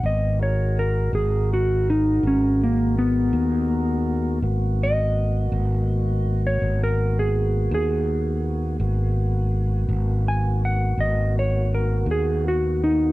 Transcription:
<<
  \new Staff \with { instrumentName = "Electric slide guitar" } { \time 12/8 \key aes \dorian \tempo 4. = 55 ees''8 des''8 bes'8 aes'8 ges'8 ees'8 des'8 bes8 ces'2 | r8 ees''2~ ees''16 des''8 bes'8 aes'8. aes'4.~ | aes'4. r8 aes''8 ges''8 ees''8 des''8 bes'8 aes'8 ges'8 ees'8 | }
  \new Staff \with { instrumentName = "Tonewheel organ" } { \time 12/8 \key aes \dorian <ces' c' g'>8 <aes ges' bes'>1~ <aes ges' bes'>4. | <bes ces' ges'>1. | <bes ces' ges'>1. | }
  \new Staff \with { instrumentName = "Fretless electric bass" } { \clef bass \time 12/8 \key aes \dorian aes,,4. aes,,4. aes,,4. ees,4. | aes,,4. aes,,4. aes,,4. ees,4. | aes,,4. aes,,4. aes,,4. ees,4. | }
>>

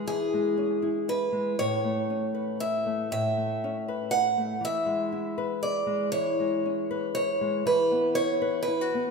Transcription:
<<
  \new Staff \with { instrumentName = "Steel-string acoustic guitar" } { \time 3/4 \key a \major \tempo 4 = 119 gis'2 b'4 | cis''2 e''4 | e''2 fis''4 | e''2 d''4 |
cis''2 cis''4 | b'4 cis''4 b'4 | }
  \new Staff \with { instrumentName = "Nylon-string guitar" } { \time 3/4 \key a \major << { r4 cis'8 e'8 e'4~ | e'4 cis'8 b'8 e'4~ | e'4 cis'8 b'8 e'4~ | e'4 e'8 b'8 gis'4 |
r4 cis'8 b'8 e'4~ | e'4 e'8 b'8 e'16 fis'8. | } \\ { e8 gis2 gis8 | a,8 a2 a8 | a,8 a2 a8 | e8 gis2 gis8 |
e8 gis2 gis8 | e8 b2 b8 | } >> }
>>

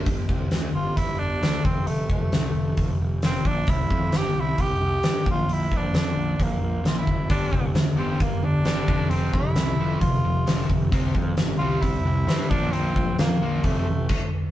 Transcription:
<<
  \new Staff \with { instrumentName = "Tenor saxophone" } { \time 4/4 \key g \dorian \tempo 4 = 132 r4. f'8 e'8 d'4 c'8 | a8 a2 r8 c'8 d'8 | e'4 g'8 e'8 g'4. f'8 | e'8 d'4. bes4 f'16 e'8. |
d'4 r8 c'8 bes8 d'4. | c'8 e'4. f'4. r8 | r4. f'8 e'4. d'8 | c'4 bes4 a4. r8 | }
  \new Staff \with { instrumentName = "Overdriven electric guitar" } { \clef bass \time 4/4 \key g \dorian r1 | r1 | r1 | r1 |
<g, d g>8 <g, d>8 <g, d>8 <g, d g>8 <g, d>8 <g, d>8 <g, d g>8 <f, c f>8 | <f, c f>8 <f, c>8 <f, c>8 <f, c f>8 <f, c>8 <f, c>8 <f, c f>8 <f, c>8 | <c g c'>8 <c g>8 <c g>8 <c g c'>8 <c g>8 <c g>8 <c g c'>8 <bes, f bes>8 | <bes, f bes>8 <bes, f>8 <bes, f>8 <bes, f bes>8 <f, c f>8 <f, c>8 r4 | }
  \new Staff \with { instrumentName = "Picked electric bass" } { \clef bass \time 4/4 \key g \dorian g,,8 c,8 d,8 g,,8 g,,8 g,,8 d,8 f,,8 | f,,8 f,,8 c,8 f,,8 f,,8 f,,8 f,,8 bes,,8 | c,8 f,8 g,,8 c,8 c,8 c,8 g,8 bes,,8 | bes,,8 bes,,8 f,8 bes,,8 bes,,8 bes,,8 bes,,8 fis,,8 |
g,,8 c,8 d,8 g,,8 g,,8 g,,8 g,,8 f,,8 | f,,8 f,,8 c,8 f,,8 f,,8 f,,8 f,,8 f,,8 | c,8 f,8 g,,8 c,8 c,8 c,8 g,8 bes,,8 | bes,,8 bes,,8 f,8 bes,,8 f,,8 a,,8 r4 | }
  \new DrumStaff \with { instrumentName = "Drums" } \drummode { \time 4/4 <hho bd>8 bd8 <hho sn>4 <hho bd>4 <hho sn>8 bd8 | hho8 bd8 <hho sn>4 <hho bd>4 <hho sn>8 bd8 | <hho bd>8 bd8 <hho sn>4 <hho bd>4 <hho sn>8 bd8 | hho8 bd8 <hho sn>4 <hho bd>4 <hho sn>8 bd8 |
<hho bd>8 bd8 <hho sn>4 <hho bd>4 <hho sn>8 bd8 | hho8 bd8 <hho sn>4 <hho bd>4 <hho sn>8 bd8 | <hho bd>8 bd8 <hho sn>4 <hho bd>4 <hho sn>8 bd8 | hho8 bd8 <hho sn>4 <hho bd>4 <cymc bd>4 | }
>>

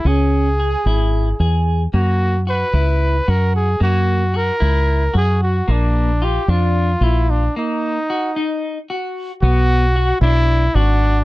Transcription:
<<
  \new Staff \with { instrumentName = "Trumpet" } { \time 7/8 \key ges \mixolydian \tempo 4 = 112 aes'2. r8 | ges'4 ces''4. bes'8 aes'8 | ges'4 bes'4. aes'8 ges'8 | d'4 g'8 f'4 fes'8 d'8 |
ees'2~ ees'8 r4 | fis'4. fes'4 d'4 | }
  \new Staff \with { instrumentName = "Clean electric guitar" } { \time 7/8 \key ges \mixolydian des'4 aes'8 fes'4 aes'4 | bes4 ges'8 fes'4 ges'4 | bes4 ges'8 fes'4 ges'4 | bes4 f'8 d'4 f'4 |
bes4 ges'8 ees'4 ges'4 | b4 fis'8 d'4 fis'4 | }
  \new Staff \with { instrumentName = "Fingered electric bass" } { \clef bass \time 7/8 \key ges \mixolydian des,4. aes,,4 fes,4 | ges,4. des,4 ges,4 | ges,4. des,4 ges,4 | bes,,4. f,4 bes,,4 |
r2. r8 | b,,4. b,,4 aes,,4 | }
>>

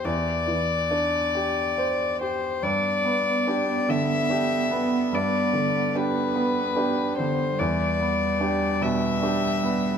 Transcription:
<<
  \new Staff \with { instrumentName = "Violin" } { \time 3/4 \key g \major \tempo 4 = 73 d''2~ d''8 c''8 | d''4. e''4. | d''4 b'4. c''8 | d''4. e''4. | }
  \new Staff \with { instrumentName = "Grand piano" } { \time 3/4 \key g \major <e, g'>8 e8 d'8 g'8 c''8 g'8 | g,8 b8 <d' g'>8 d8 <d' g'>8 b8 | g,8 d8 <d' g'>8 b8 <d' g'>8 d8 | e,8 b8 <d' g'>8 b,8 <d' g'>8 b8 | }
  \new Staff \with { instrumentName = "Cello" } { \time 3/4 \key g \major r2. | b2.~ | b2. | g2. | }
>>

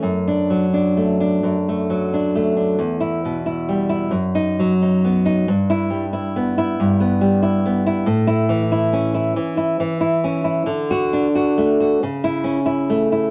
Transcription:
\new Staff \with { instrumentName = "Nylon-string guitar" } { \time 4/4 \key d \major \tempo 4 = 90 << { \tuplet 3/2 { r8 d'4 } r2. | \tuplet 3/2 { r8 e'4 } r4 \tuplet 3/2 { r8 dis'4 } r4 | \tuplet 3/2 { r8 e'4 } r2. | \tuplet 3/2 { r8 e'4 } r2. |
\tuplet 3/2 { r8 fis'4 } r4 \tuplet 3/2 { r8 e'4 } r4 | } \\ { \tuplet 3/2 { fis,4 fis8 d'8 a8 d'8 fis,8 a8 fis8 d'8 a8 d'8 } | \tuplet 3/2 { e,4 b,8 e'8 g8 e'8 fis,4 fis8 dis'8 b8 dis'8 } | \tuplet 3/2 { g,4 g8 e'8 b8 e'8 g,8 b8 g8 e'8 b8 e'8 } | \tuplet 3/2 { a,4 e8 e'8 cis'8 e'8 e8 e'8 e8 e'8 cis'8 e'8 } |
\tuplet 3/2 { d4 d'8 fis'8 a8 fis'8 cis4 cis'8 e'8 a8 e'8 } | } >> }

